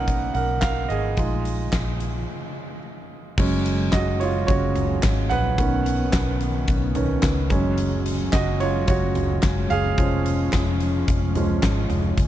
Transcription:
Already playing: B1 A#3 C#4 D#4 A#4 B4 F#5
0.08 kick, closed hi-hat
0.34 B1 A#4 F#5, closed hi-hat
0.61 A#4 F5, kick, snare, clap, closed hi-hat
0.89 G#1 G#4 D#5, closed hi-hat
1.17 A#1 G#3 D#4 F4, kick, closed hi-hat
1.45 closed hi-hat
1.73 A#1, kick, snare, clap, closed hi-hat
2.00 closed hi-hat
3.37 F#1 F#3 G#3 C#4, kick, crash
3.66 closed hi-hat
3.92 F#1 F#4 D#5, kick, snare, clap, closed hi-hat
4.20 F4 C#5, closed hi-hat
4.47 F#1 F#3 G#3 C#4 F#4 C#5, kick, closed hi-hat
4.75 closed hi-hat, floor tom
5.02 G#1, kick, snare, clap, closed hi-hat
5.29 A#1 B4 F#5, closed hi-hat, floor tom
5.58 B1 D#3 B3 C#4, kick, closed hi-hat
5.86 closed hi-hat
6.13 B1, kick, snare, clap, closed hi-hat
6.41 closed hi-hat
6.68 B1, kick, closed hi-hat
6.95 D#3 B3 C#4, closed hi-hat, floor tom
7.22 C#2, kick, snare, clap, closed hi-hat
7.50 F#1 F#3 G#3 C#4, kick, closed hi-hat, floor tom
7.78 closed hi-hat
8.06 closed hi-hat
8.32 F#1 F#4 D#5, kick, snare, clap, closed hi-hat
8.60 F4 C#5, closed hi-hat
8.88 F#1 F#4 C#5, kick, closed hi-hat
9.15 closed hi-hat, floor tom
9.42 F#1, kick, snare, clap, closed hi-hat
9.70 F#1 G#4 F5, closed hi-hat, floor tom
9.98 F1 F3 G#3 C#4, kick, closed hi-hat
10.26 closed hi-hat
10.53 F1, kick, snare, clap, closed hi-hat
10.80 closed hi-hat
11.08 F1, kick, closed hi-hat
11.35 F3 G#3 C#4, closed hi-hat, floor tom
11.62 G#1, kick, snare, clap, closed hi-hat
11.90 F1, closed hi-hat, floor tom
12.17 F#1 F#3, kick, closed hi-hat

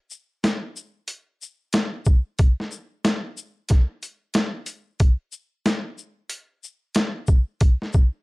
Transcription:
0.10 shaker
0.44 snare, closed hi-hat
0.76 shaker
1.08 closed hi-hat
1.42 shaker
1.73 snare, closed hi-hat
2.05 kick, shaker
2.39 kick, closed hi-hat
2.60 snare
2.71 shaker
3.05 snare, closed hi-hat
3.37 shaker
3.69 kick, snare, closed hi-hat
4.03 closed hi-hat, shaker
4.34 snare, closed hi-hat
4.66 closed hi-hat, shaker
5.00 kick, closed hi-hat
5.32 shaker
5.66 snare, closed hi-hat
5.98 shaker
6.30 closed hi-hat
6.64 shaker
6.95 snare, closed hi-hat
7.27 kick, shaker
7.61 kick, closed hi-hat
7.82 snare
7.93 kick, shaker

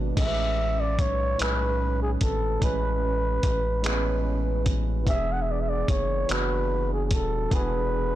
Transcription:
Already playing: G#1 B2 G#3 B3 D4 B4
0.15 A1 A2 G#3 C#4, kick, closed hi-hat, crash
0.19 A4 E5
0.27 B4
0.80 D5
0.99 B1 C#5, kick, closed hi-hat
1.38 B1 A2 G#3 C#4 B4, finger snap, closed hi-hat
1.43 B4
2.02 G#4
2.21 G#1 A4, kick, closed hi-hat
2.60 A1 A2 G#3 C#4, kick, closed hi-hat
2.64 B4
3.43 A1, kick, closed hi-hat
3.82 A2 G#3 B3, closed hi-hat
3.86 B4, finger snap
3.92 C#4
4.66 kick, closed hi-hat
5.03 E3 B3, kick, closed hi-hat
5.07 E1 D4 G4 E5
5.15 G#4
5.33 F#5
5.42 E5
5.51 D5
5.61 E5
5.69 D5
5.88 F#1 C#5, kick, closed hi-hat
6.27 F#1 E3 B3 D4, closed hi-hat
6.31 F#4 B4, finger snap
6.93 G#4
7.06 G#4
7.11 D#1 A4, kick, closed hi-hat
7.50 E1 E3 B3 D4, kick, closed hi-hat
7.54 G#4 B4

